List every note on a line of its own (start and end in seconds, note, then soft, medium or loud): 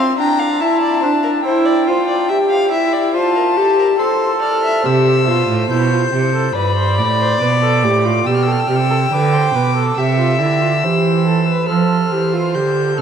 0.00 0.18 C4 medium
0.00 0.18 C6 medium
0.19 0.62 D4 medium
0.19 0.41 G5 medium
0.19 0.63 A#5 medium
0.39 0.62 F5 medium
0.60 1.04 E4 medium
0.60 0.81 E5 medium
0.60 1.44 A5 medium
0.81 1.01 D5 medium
1.02 1.44 D4 medium
1.02 1.10 C5 medium
1.23 1.31 A#4 medium
1.45 1.89 E4 medium
1.45 1.67 C5 medium
1.45 3.11 G5 medium
1.65 1.86 D5 medium
1.87 2.31 F4 medium
1.87 2.07 C5 medium
2.08 2.28 D5 medium
2.28 2.71 G4 medium
2.28 2.36 E5 medium
2.50 2.71 F5 medium
2.71 3.16 E4 medium
2.71 2.94 E5 medium
2.93 3.14 D5 medium
3.14 3.58 F4 loud
3.14 3.35 C5 medium
3.14 4.01 A5 medium
3.36 3.44 A#4 medium
3.57 3.98 G4 medium
3.57 3.78 A4 medium
3.78 3.86 A#4 medium
3.99 4.86 A4 medium
3.99 4.41 C5 medium
3.99 4.41 C6 medium
4.42 4.63 D5 medium
4.42 4.87 F6 medium
4.63 4.84 E5 medium
4.85 5.29 C3 medium
4.85 5.27 G4 medium
4.85 6.56 C5 medium
4.85 5.69 E6 medium
5.28 5.48 B2 medium
5.28 5.69 F4 medium
5.49 5.69 A2 medium
5.70 6.11 B2 medium
5.70 5.91 E4 medium
5.70 6.53 G6 medium
5.92 6.00 F4 medium
6.13 6.54 C3 medium
6.13 6.21 G4 medium
6.34 6.54 A4 medium
6.55 6.99 G2 medium
6.55 6.76 B4 medium
6.55 8.25 D5 medium
6.55 7.39 B5 medium
6.77 6.98 C5 medium
6.98 7.40 A2 medium
6.98 7.06 D5 medium
7.20 7.40 C5 medium
7.41 7.85 B2 medium
7.41 7.49 B4 medium
7.41 8.28 D6 medium
7.62 7.85 A4 medium
7.83 8.26 A2 medium
7.83 8.07 G4 medium
8.05 8.28 F4 medium
8.26 8.68 B2 medium
8.26 8.49 G4 medium
8.26 9.99 G5 medium
8.26 8.36 E6 medium
8.35 8.44 F6 medium
8.43 8.53 E6 medium
8.48 8.68 A4 medium
8.48 8.61 F6 medium
8.59 8.69 E6 medium
8.67 9.11 C3 medium
8.67 8.77 G4 medium
8.67 8.77 F6 medium
8.75 9.14 E6 medium
8.90 8.98 A4 medium
9.11 9.54 D3 medium
9.11 9.35 B4 medium
9.11 9.97 D6 medium
9.33 9.56 C5 medium
9.54 9.96 B2 medium
9.54 9.76 B4 medium
9.76 9.99 A4 medium
9.97 10.42 C3 medium
9.97 10.18 G4 medium
9.97 10.85 E5 medium
9.97 11.66 E6 medium
10.19 10.39 F4 medium
10.40 10.85 D3 medium
10.40 10.61 E4 medium
10.62 10.70 F4 medium
10.83 11.69 E3 medium
10.83 11.25 G4 medium
10.83 11.69 C5 medium
11.26 11.47 A4 medium
11.48 11.68 B4 medium
11.69 12.09 F3 medium
11.69 12.13 A4 medium
11.69 13.02 C5 medium
11.69 12.56 F6 medium
12.12 12.56 E3 medium
12.12 12.35 G4 medium
12.33 12.56 F4 medium
12.55 12.99 D3 medium
12.55 12.96 G4 medium
12.55 12.99 G6 medium
12.97 13.02 C3 medium
12.97 13.02 A4 medium
12.97 13.02 F6 medium